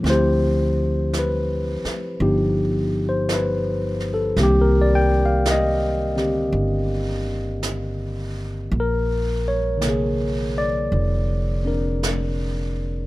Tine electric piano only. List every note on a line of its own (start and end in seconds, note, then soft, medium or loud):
0.00 2.19 F3 soft
0.00 2.20 C4 soft
0.08 2.23 E4 soft
0.08 2.21 G4 medium
0.08 1.11 C5 medium
1.19 1.59 B4 medium
2.21 4.37 F3 soft
2.21 4.37 B3 soft
2.21 4.37 D#4 soft
2.21 4.37 G4 medium
3.09 3.27 C5 medium
3.34 4.17 B4 medium
4.14 4.34 A4 medium
4.38 8.72 D#3 soft
4.38 8.73 A#3 soft
4.38 6.15 C4 soft
4.38 4.42 G4 soft
4.43 4.63 G4 medium
4.61 4.73 A#4 medium
4.82 5.11 D5 medium
4.95 5.19 G5 medium
5.26 5.44 F5 medium
5.51 7.61 D#5 medium
6.16 8.72 D3 soft
6.16 8.72 C4 soft
6.16 8.73 G4 soft
8.80 9.46 A#4 medium
9.48 10.51 C#5 medium
9.77 13.07 D3 soft
9.77 13.07 A#3 soft
9.85 13.07 C3 soft
9.85 13.07 G#4 soft
10.58 11.62 D5 medium
11.65 13.07 C4 soft
11.65 13.07 D4 soft
11.65 13.07 A#4 soft